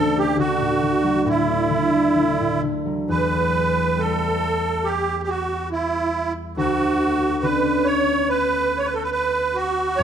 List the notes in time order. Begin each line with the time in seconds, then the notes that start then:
Already playing: D2 D3 A3 E4 A4
0.17 A3 G4
0.39 D3 F#4
0.60 A2
0.81 D3
1.03 F#3
1.25 A2 E4
1.48 D4
1.70 D3
1.93 A3
2.17 D3
2.40 A2
2.62 D3
2.86 F#3
3.09 E2 B4
3.96 G3 B3 E4 A4
4.84 G4
5.23 G4
5.28 F#4
5.71 E4
6.57 D2 F#4
7.42 D3 B3 C#4 B4
7.85 C#5
8.29 B4
8.78 C#5
8.85 B4
8.93 A4
9.03 B4
9.12 B4
9.55 F#4
9.97 F#2 C#5